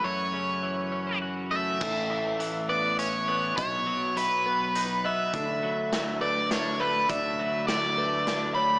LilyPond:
<<
  \new Staff \with { instrumentName = "Overdriven electric guitar" } { \time 3/4 \key a \mixolydian \tempo 4 = 102 cis''2 r8 e''8~ | e''4. d''8 cis''4 | cis''4 b'4. e''8~ | e''4. d''8 cis''8 b'8 |
e''4 d''4. b''8 | }
  \new Staff \with { instrumentName = "Felt piano" } { \time 3/4 \key a \mixolydian r2. | a'4 r8 b'4 b'8 | dis''4 r8 b'4 dis''8 | a'4 r8 b'4 b'8 |
d''4 r8 b'4 cis''8 | }
  \new Staff \with { instrumentName = "Clean electric guitar" } { \time 3/4 \key a \mixolydian <fis, e a cis' fis'>8 cis8 e8 cis'8 fis'8 a8 | a,8 e8 e8 b8 cis'8 b8 | b,8 fis8 fis8 b8 dis'8 b8 | d8 fis8 fis8 a8 d'8 a8 |
d8 fis8 fis8 a8 d'8 a8 | }
  \new Staff \with { instrumentName = "Fingered electric bass" } { \clef bass \time 3/4 \key a \mixolydian fis,2. | a,,2. | b,,2. | d,2. |
d,2. | }
  \new DrumStaff \with { instrumentName = "Drums" } \drummode { \time 3/4 r4 r4 r4 | <cymc bd>4 hh4 hh4 | <hh bd>4 hh4 hh4 | <hh bd>4 <hh sn>4 <hh sn>4 |
<hh bd>4 <hh sn>4 <hh sn>4 | }
>>